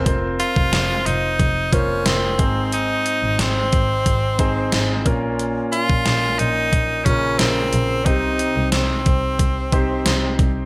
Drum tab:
HH |x-x-x-x-x-x-x-x-|x-x-x-x-x-x-x-x-|x-x-x-x-x-x-x-x-|x-x-x-x-x-x-x-x-|
SD |----o-------o---|----o-------o---|----o-------o---|----o-------o---|
BD |o--o----o-o---o-|------o-o-o---o-|---o----o-o-----|o-----o-o-o---o-|